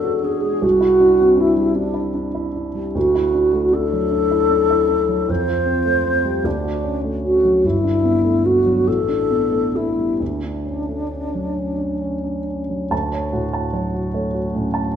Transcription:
0.00 0.59 E2 soft
0.00 0.43 G#3 soft
0.00 0.65 C#4 soft
0.00 0.23 D4 soft
0.00 0.04 F#4 soft
0.00 0.36 F#4 soft
0.00 0.25 A4 medium
0.23 0.55 D4 soft
0.23 0.65 G#4 medium
0.43 0.63 G#3 soft
0.62 2.91 C2 soft
0.62 1.41 F#4 medium
0.80 1.12 E4 soft
1.00 1.31 D4 soft
1.20 1.50 C4 soft
1.37 1.68 D4 soft
1.37 1.77 E4 medium
1.57 1.88 G3 soft
1.75 2.07 D4 soft
1.75 2.15 D4 medium
1.94 2.27 E4 soft
2.15 2.47 D4 soft
2.35 2.67 E4 soft
2.54 2.87 D4 soft
2.75 2.95 G3 soft
2.95 5.25 D2 soft
2.95 3.75 F#4 medium
3.15 3.46 E4 soft
3.34 3.65 D4 soft
3.53 3.84 A3 soft
3.72 4.04 D4 soft
3.72 5.31 A4 medium
3.93 4.24 F#3 soft
4.12 4.43 D4 soft
4.31 4.63 E4 soft
4.50 4.82 D4 soft
4.70 5.02 E4 soft
4.89 5.21 D4 soft
5.08 5.28 F#3 soft
5.28 6.41 F2 soft
5.28 6.46 C5 medium
5.48 5.78 F4 soft
5.65 5.97 C4 soft
5.85 6.17 A3 soft
6.04 6.36 C4 soft
6.25 6.45 G3 soft
6.44 7.60 D2 soft
6.44 6.99 D4 medium
6.64 6.96 F#4 soft
6.84 7.16 C#4 soft
7.04 7.36 A3 soft
7.24 7.56 C#4 soft
7.24 7.67 F#4 medium
7.44 7.64 F#3 soft
7.64 8.83 G1 soft
7.64 8.46 E4 medium
7.84 8.16 D4 soft
8.04 8.37 B3 soft
8.25 8.58 A3 soft
8.45 8.78 B3 soft
8.45 8.89 F#4 medium
8.66 8.87 F#3 soft
8.87 10.17 A1 soft
8.87 9.77 A4 medium
9.09 9.44 D4 soft
9.30 9.66 B3 soft
9.52 9.89 A3 soft
9.75 10.11 B3 soft
9.75 10.23 E4 soft
9.97 10.20 G3 soft
10.20 12.87 D2 soft
10.20 12.48 D4 soft
10.43 10.80 D4 soft
10.66 11.02 C#4 soft
10.89 11.25 A3 soft
11.12 11.48 C#4 soft
11.35 11.70 F#3 soft
11.56 11.92 C#4 soft
11.77 12.14 D4 soft
12.01 12.38 C#4 soft
12.24 12.61 D4 soft
12.48 12.83 C#4 soft
12.70 12.91 F#3 soft
12.91 14.96 D2 soft
12.91 13.25 A5 soft
13.12 13.45 C#5 soft
13.33 13.98 A2 soft
13.33 13.66 F#4 soft
13.53 13.86 A5 soft
13.73 14.37 F#3 soft
13.73 14.06 C#5 soft
13.94 14.26 F#4 soft
14.14 14.78 A3 soft
14.14 14.46 C#5 soft
14.34 14.66 F#4 soft
14.54 14.87 A2 soft
14.54 14.96 C#4 soft
14.74 14.96 A5 soft

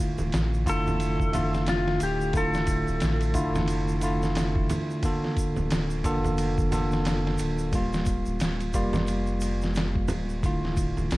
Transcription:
0.00 0.62 D3 medium
0.00 0.63 A3 medium
0.00 0.63 E4 medium
0.00 0.64 F4 medium
0.18 0.31 D1 medium
0.18 low conga medium
0.18 shaker soft
0.32 0.68 A1 medium
0.32 snare loud
0.32 ride medium
0.32 shaker medium
0.54 shaker soft
0.66 1.98 F1 medium
0.66 1.30 D3 medium
0.66 1.30 A3 medium
0.66 1.31 E4 medium
0.66 1.31 F4 medium
0.66 1.72 A4 loud
0.66 kick medium
0.66 ride medium
0.66 shaker medium
0.87 low conga medium
0.87 shaker soft
1.00 ride medium
1.00 shaker medium
1.20 kick medium
1.20 shaker soft
1.32 2.31 D3 medium
1.32 2.31 A3 medium
1.32 2.32 F4 medium
1.32 2.31 E5 medium
1.32 ride medium
1.32 low conga medium
1.32 shaker medium
1.54 snare soft
1.54 shaker soft
1.67 2.03 F4 medium
1.67 snare loud
1.67 ride medium
1.67 shaker soft
1.88 snare soft
2.00 2.84 D1 medium
2.00 2.33 G4 medium
2.00 ride medium
2.00 shaker medium
2.21 shaker soft
2.33 3.31 D3 medium
2.33 3.32 A3 medium
2.33 3.33 E4 medium
2.33 3.33 F4 medium
2.33 kick loud
2.33 ride medium
2.33 shaker medium
2.37 4.68 A4 medium
2.54 snare soft
2.54 shaker soft
2.67 kick medium
2.67 ride medium
2.67 shaker medium
2.88 3.00 D1 loud
2.88 shaker soft
3.00 3.36 A1 medium
3.00 snare loud
3.00 ride medium
3.00 shaker medium
3.21 ride soft
3.21 shaker soft
3.34 4.67 F1 medium
3.34 3.99 D3 medium
3.34 3.99 A3 medium
3.34 3.99 E4 medium
3.34 3.99 F4 medium
3.34 kick medium
3.34 ride medium
3.34 shaker medium
3.55 snare soft
3.55 low conga medium
3.55 shaker soft
3.68 ride medium
3.68 shaker medium
3.88 shaker soft
4.01 5.00 D3 medium
4.01 5.00 A3 medium
4.01 5.01 E4 medium
4.01 5.01 F4 medium
4.01 ride medium
4.01 shaker medium
4.22 snare soft
4.22 shaker soft
4.35 snare loud
4.35 ride medium
4.35 shaker medium
4.56 kick medium
4.70 ride medium
4.70 low conga medium
4.70 shaker medium
4.91 shaker soft
5.03 6.01 D3 medium
5.03 6.02 A#3 medium
5.03 6.02 F4 medium
5.03 6.03 A4 medium
5.03 kick loud
5.03 ride medium
5.03 shaker medium
5.24 snare soft
5.37 kick medium
5.37 ride medium
5.37 shaker medium
5.56 5.70 D1 loud
5.56 low conga medium
5.56 shaker soft
5.70 6.06 D1 medium
5.70 snare loud
5.70 ride medium
5.70 shaker medium
5.90 shaker soft
6.04 7.37 F1 medium
6.04 6.69 D3 medium
6.04 6.69 A#3 medium
6.04 6.69 F4 medium
6.04 6.69 A4 medium
6.04 kick medium
6.04 ride medium
6.04 shaker medium
6.24 low conga medium
6.24 shaker soft
6.38 ride medium
6.38 shaker medium
6.58 kick medium
6.58 shaker soft
6.71 7.70 D3 medium
6.71 7.70 A#3 medium
6.71 7.71 F4 medium
6.71 7.71 A4 medium
6.71 ride medium
6.71 low conga medium
6.71 shaker loud
6.91 snare soft
6.91 shaker soft
7.05 snare loud
7.05 ride medium
7.05 shaker soft
7.27 snare soft
7.38 8.23 D1 medium
7.38 ride medium
7.38 shaker medium
7.58 shaker soft
7.72 8.71 G3 medium
7.72 8.71 A#3 medium
7.72 8.72 F4 medium
7.72 kick loud
7.72 ride medium
7.72 shaker medium
7.93 snare medium
7.93 shaker soft
8.06 kick medium
8.06 ride medium
8.06 shaker medium
8.26 8.39 D1 medium
8.26 shaker soft
8.40 8.76 D1 medium
8.40 snare loud
8.40 ride medium
8.40 shaker medium
8.61 ride soft
8.61 shaker soft
8.74 10.07 F1 medium
8.74 9.39 G3 medium
8.74 9.39 A#3 medium
8.74 9.39 F4 medium
8.74 kick medium
8.74 ride medium
8.74 shaker medium
8.93 snare soft
8.93 low conga medium
8.93 shaker soft
9.07 ride medium
9.07 shaker medium
9.27 shaker soft
9.41 ride medium
9.41 shaker medium
9.61 snare soft
9.61 shaker soft
9.75 snare loud
9.75 ride medium
9.75 shaker soft
9.95 kick medium
10.08 10.93 D1 medium
10.08 ride medium
10.08 low conga medium
10.08 shaker loud
10.29 shaker soft
10.43 11.17 D3 medium
10.43 11.17 A3 medium
10.43 11.17 E4 medium
10.43 11.17 F4 medium
10.43 kick loud
10.43 ride medium
10.43 shaker soft
10.65 snare soft
10.77 kick medium
10.77 ride medium
10.77 shaker medium
10.97 11.09 D1 medium
10.97 low conga soft
10.97 shaker soft
11.11 11.17 A1 medium
11.11 snare loud
11.11 ride medium
11.11 shaker medium

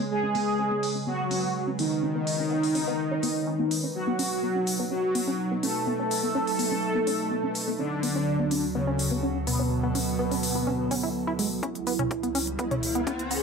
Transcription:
0.00 3.91 C#3 medium
0.00 3.91 G#3 medium
0.00 7.75 B4 medium
0.00 3.91 C#5 medium
0.11 0.98 G#3 loud
0.11 0.98 G#4 loud
0.23 0.27 C#4 medium
0.35 0.41 B3 medium
0.35 open hi-hat medium
0.59 0.62 C#4 medium
0.71 0.77 B3 medium
0.83 open hi-hat loud
0.95 0.99 C#4 medium
1.07 1.70 F#3 loud
1.07 1.13 B3 medium
1.07 1.70 F#4 medium
1.31 1.34 C#4 medium
1.31 open hi-hat loud
1.43 1.49 B3 medium
1.67 1.71 C#4 medium
1.79 3.86 D#3 loud
1.79 1.85 B3 medium
1.79 3.86 D#4 loud
1.79 open hi-hat medium
2.03 2.06 C#4 medium
2.15 2.21 B3 medium
2.27 open hi-hat medium
2.39 2.43 C#4 medium
2.51 2.57 B3 medium
2.63 open hi-hat medium
2.75 2.79 C#4 medium
2.75 open hi-hat loud
2.87 2.93 B3 medium
3.11 3.15 C#4 medium
3.23 3.29 B3 medium
3.23 open hi-hat loud
3.47 3.51 C#4 medium
3.59 3.65 B3 medium
3.71 open hi-hat medium
3.83 3.87 C#4 medium
3.95 7.75 B2 medium
3.95 4.82 F#3 medium
3.95 7.75 F#3 medium
3.95 7.75 D#4 medium
3.95 4.82 F#4 loud
4.07 4.13 B3 medium
4.19 4.22 C#4 medium
4.19 open hi-hat medium
4.43 4.49 B3 medium
4.55 4.59 C#4 medium
4.67 open hi-hat loud
4.79 4.85 B3 medium
4.91 5.54 F#3 medium
4.91 4.95 C#4 medium
4.91 5.54 F#4 medium
5.15 5.21 B3 medium
5.15 open hi-hat medium
5.28 5.31 C#4 medium
5.52 5.57 B3 medium
5.63 7.70 A3 loud
5.63 5.67 C#4 medium
5.63 7.70 A4 loud
5.63 open hi-hat medium
5.87 5.93 B3 medium
5.99 6.03 C#4 medium
6.11 open hi-hat medium
6.23 6.29 B3 medium
6.35 6.39 C#4 medium
6.47 open hi-hat medium
6.59 6.65 B3 medium
6.59 open hi-hat loud
6.71 6.75 C#4 medium
6.95 7.01 B3 medium
7.07 7.11 C#4 medium
7.07 open hi-hat medium
7.31 7.37 B3 medium
7.43 7.47 C#4 medium
7.55 open hi-hat medium
7.68 7.73 B3 medium
7.79 11.59 D2 medium
7.79 8.66 D3 loud
7.79 11.59 F#3 medium
7.79 7.83 C#4 medium
7.79 8.66 D4 loud
7.79 11.59 F#4 medium
7.79 11.59 A4 medium
8.03 8.09 B3 medium
8.03 open hi-hat medium
8.16 8.19 C#4 medium
8.40 8.45 B3 medium
8.51 8.55 C#4 medium
8.51 open hi-hat loud
8.75 9.38 C#3 medium
8.75 8.81 B3 medium
8.75 9.38 C#4 medium
8.87 8.91 C#4 medium
8.99 open hi-hat medium
9.11 9.17 B3 medium
9.23 9.27 C#4 medium
9.47 11.54 B2 loud
9.47 11.54 B3 loud
9.47 9.53 B3 medium
9.47 open hi-hat medium
9.59 9.63 C#4 medium
9.83 9.89 B3 medium
9.95 9.99 C#4 medium
9.95 open hi-hat medium
10.19 10.25 B3 medium
10.31 10.35 C#4 medium
10.31 open hi-hat medium
10.43 open hi-hat medium
10.55 10.61 B3 medium
10.67 10.70 C#4 medium
10.91 10.95 C#4 medium
10.91 open hi-hat medium
11.03 11.09 E4 medium
11.27 11.33 E4 loud
11.39 11.48 G#3 medium
11.39 open hi-hat medium
11.63 13.43 C#2 medium
11.63 13.43 C#3 medium
11.63 13.43 E3 medium
11.63 11.66 C#4 medium
11.63 12.50 E4 loud
11.63 13.43 B4 medium
11.63 kick loud
11.63 closed hi-hat medium
11.63 riser medium
11.75 closed hi-hat soft
11.87 11.93 B3 medium
11.87 open hi-hat medium
11.99 12.03 C#4 medium
11.99 closed hi-hat soft
11.99 mid tom medium
12.11 kick loud
12.11 closed hi-hat medium
12.23 12.29 B3 medium
12.23 closed hi-hat soft
12.35 12.38 C#4 medium
12.35 open hi-hat loud
12.47 closed hi-hat soft
12.59 12.65 B3 medium
12.59 13.22 E4 loud
12.59 kick loud
12.59 closed hi-hat medium
12.71 12.75 C#4 medium
12.71 closed hi-hat soft
12.71 mid tom medium
12.83 open hi-hat loud
12.95 13.01 B3 medium
12.95 closed hi-hat soft
13.07 13.10 C#4 medium
13.07 kick loud
13.07 closed hi-hat medium
13.19 closed hi-hat soft
13.31 13.37 B3 medium
13.31 13.43 G#4 loud
13.31 open hi-hat medium

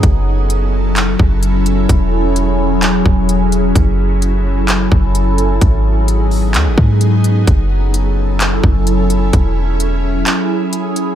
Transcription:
0.03 1.16 F#1 loud
0.03 11.15 F#3 medium
0.03 5.57 C#4 medium
0.03 3.72 E4 medium
0.03 1.87 A4 medium
0.03 kick loud
0.03 closed hi-hat medium
0.50 closed hi-hat medium
0.96 clap loud
0.96 closed hi-hat medium
1.19 1.86 F#1 loud
1.19 kick loud
1.43 closed hi-hat medium
1.66 closed hi-hat medium
1.89 3.02 E1 loud
1.89 3.73 G#4 medium
1.89 kick loud
1.89 closed hi-hat medium
2.36 closed hi-hat medium
2.82 clap loud
2.82 closed hi-hat medium
3.06 3.73 E1 loud
3.06 kick loud
3.29 closed hi-hat medium
3.52 closed hi-hat medium
3.75 4.88 F#1 loud
3.75 5.60 E4 medium
3.75 5.60 A4 medium
3.75 kick loud
3.75 closed hi-hat medium
4.22 closed hi-hat medium
4.68 clap loud
4.68 closed hi-hat medium
4.92 5.59 F#1 loud
4.92 kick loud
5.15 closed hi-hat medium
5.38 closed hi-hat medium
5.61 6.56 G#1 loud
5.61 7.46 B3 medium
5.61 7.46 D#4 medium
5.61 7.46 G#4 medium
5.61 kick loud
5.61 closed hi-hat medium
6.08 closed hi-hat medium
6.31 open hi-hat soft
6.54 6.68 D#2 loud
6.54 clap loud
6.54 closed hi-hat medium
6.66 6.77 G#1 medium
6.78 7.45 G#2 loud
6.78 kick loud
7.01 closed hi-hat medium
7.24 closed hi-hat medium
7.47 8.60 F#1 loud
7.47 11.15 C#4 medium
7.47 11.15 E4 medium
7.47 9.32 A4 medium
7.47 kick loud
7.47 closed hi-hat medium
7.94 closed hi-hat medium
8.40 clap loud
8.40 closed hi-hat medium
8.63 9.31 F#1 loud
8.63 kick loud
8.87 closed hi-hat medium
9.10 closed hi-hat medium
9.33 10.23 E1 loud
9.33 11.15 G#4 medium
9.33 kick loud
9.33 closed hi-hat medium
9.80 closed hi-hat medium
10.26 clap loud
10.26 closed hi-hat medium
10.73 closed hi-hat medium
10.96 closed hi-hat medium

